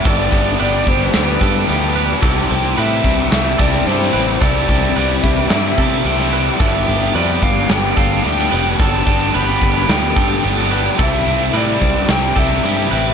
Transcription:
<<
  \new Staff \with { instrumentName = "Flute" } { \time 4/4 \key g \major \tempo 4 = 110 d''4 d''8 c''8 b'4. r8 | r8 g''8 e''4 e''8 d''8 c''4 | d''4. e''8 e''4. r8 | e''4 d''8 f''8 g''8 f''8 g''4 |
a''4 b''4 g''4. r8 | e''4 d''4 g''8 e''4 e''8 | }
  \new Staff \with { instrumentName = "Clean electric guitar" } { \time 4/4 \key g \major a'4 b'4 r8 a'4 b'8 | a'4 b'4 r8 a'4 b'8 | a'4 b'4 r8 a'4 b'8 | a'4 b'4 r8 a'4 b'8 |
a'4 b'4 r8 a'4 b'8 | a'4 b'4 r8 a'4 b'8 | }
  \new Staff \with { instrumentName = "Overdriven electric guitar" } { \time 4/4 \key g \major <g, d g b d' g'>8 <g b d' g'>8 <g b d' g'>4. <g b d' g'>8 <g b d' g'>8 <g b d' g'>8 | <c e g e' g'>8 <g e' g'>8 <e g e' g'>4. <g e' g'>8 <e g e' g'>8 <g e' g'>8 | <c e g e' g'>8 <g e' g'>8 <e g e' g'>4. <g e' g'>8 <e g e' g'>8 <g e' g'>8 | <g, d g b d' g'>8 <g b d' g'>8 <g b d' g'>4. <g b d' g'>8 <g b d' g'>8 <g b d' g'>8 |
<g, d g b d' g'>8 <g b d' g'>8 <g b d' g'>4. <g b d' g'>8 <g b d' g'>8 <g b d' g'>8 | <c g c' e' g'>8 <c' e' g'>8 <g c' e' g'>4. <c' e' g'>8 <g c' e' g'>8 <c' e' g'>8 | }
  \new Staff \with { instrumentName = "Overdriven electric guitar" } { \time 4/4 \key g \major <g, d g b d' g'>8 <g b d' g'>8 <g b d' g'>4 <g, d g b d' g'>4 <g b d' g'>4 | <c g c' e' g'>8 <c' e' g'>8 <g c' e' g'>4 <c g c' e' g'>4 <g c' e' g'>4 | <c g c' e' g'>8 <c' e' g'>8 <g c' e' g'>4 <c g c' e' g'>4 <g c' e' g'>4 | <g, d g b d' g'>8 <g b d' g'>8 <g b d' g'>4 <g, d g b d' g'>4 <g b d' g'>4 |
<g, d g b d' g'>8 <g b d' g'>8 <g b d' g'>4 <g, d g b d' g'>4 <g b d' g'>4 | <c g c' e' g'>8 <c' e' g'>8 <g c' e' g'>4 <c g c' e' g'>4 <g c' e' g'>4 | }
  \new Staff \with { instrumentName = "Picked electric bass" } { \clef bass \time 4/4 \key g \major g,,8 g,,8 g,,8 g,,8 d,8 g,8 d,4 | c,8 c,8 a,8 c,8 c,8 c,8 g,8 a,,8 | c,8 c,8 c,8 c,8 g,8 c8 c,4 | g,,8 g,,8 f,8 g,,8 g,,8 g,,8 d,8 f,,8 |
g,,8 g,,8 g,,8 g,,8 d,8 g,8 g,,4 | c,8 c,8 a,8 c,8 c,8 c,8 g,8 a,,8 | }
  \new DrumStaff \with { instrumentName = "Drums" } \drummode { \time 4/4 <hho bd>8 bd8 hho8 bd8 <hho sn>8 bd8 hho4 | <hho bd>4 hho8 bd8 <hho sn>8 bd8 hho16 sn8. | <hho bd>8 bd8 hho8 bd8 <hho sn>8 bd8 hho16 sn8. | <hho bd>4 hho8 bd8 <hho sn>8 bd8 hho16 sn8. |
<hho bd>8 bd8 hho8 bd8 <hho sn>8 bd8 hho16 sn8. | <hho bd>4 hho8 bd8 <hho sn>8 bd8 hho4 | }
>>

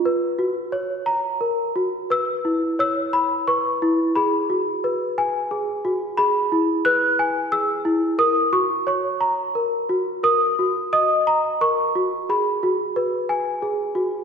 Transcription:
\new Staff \with { instrumentName = "Celesta" } { \time 3/4 \key cis \dorian \tempo 4 = 88 << { r2. | e'''4 e'''4 cis'''4 | b''2~ b''8 r8 | b''4 fis'''4 e'''4 |
dis'''8 cis'''8 cis'''4. r8 | dis'''4 dis'''4 cis'''4 | b''2~ b''8 r8 | } \\ { b'8 fis'8 cis''8 ais''8 ais'8 fis'8 | b'8 e'8 cis''8 b''8 b'8 e'8 | gis'8 fis'8 b'8 gis''8 gis'8 fis'8 | gis'8 e'8 b'8 gis''8 gis'8 e'8 |
ais'8 fis'8 cis''8 ais''8 ais'8 fis'8 | ais'8 fis'8 dis''8 ais''8 ais'8 fis'8 | gis'8 fis'8 b'8 gis''8 gis'8 fis'8 | } >> }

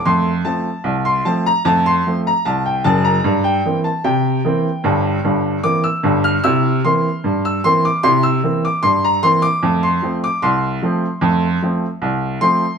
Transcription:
<<
  \new Staff \with { instrumentName = "Upright piano" } { \time 2/4 \key f \major \tempo 4 = 75 c'''8 a''8. c'''16 a''16 bes''16 | a''16 c'''8 bes''16 a''16 g''16 a''16 bes''16~ | bes''16 g''8 a''16 g''4~ | g''4 d'''16 e'''8 f'''16 |
e'''8 c'''8. e'''16 c'''16 d'''16 | c'''16 e'''8 d'''16 c'''16 bes''16 c'''16 d'''16~ | d'''16 c'''8 d'''16 c'''4~ | c'''4 r8 c'''8 | }
  \new Staff \with { instrumentName = "Upright piano" } { \clef bass \time 2/4 \key f \major <f, a>8 <f a c'>8 c,8 <f a c'>8 | <f, a>8 <f a c'>8 c,8 <ges,, ges,>8 | g,8 <e bes c'>8 c8 <e bes c'>8 | <g,, g,>8 <g,, g,>8 <e bes c'>8 <g,, g,>8 |
<c e'>8 <e bes c'>8 g,8 <e bes c'>8 | <c e'>8 <e bes c'>8 g,8 <e bes c'>8 | <f, a>8 <f a c'>8 c,8 <f a c'>8 | <f, a>8 <f a c'>8 c,8 <f a c'>8 | }
>>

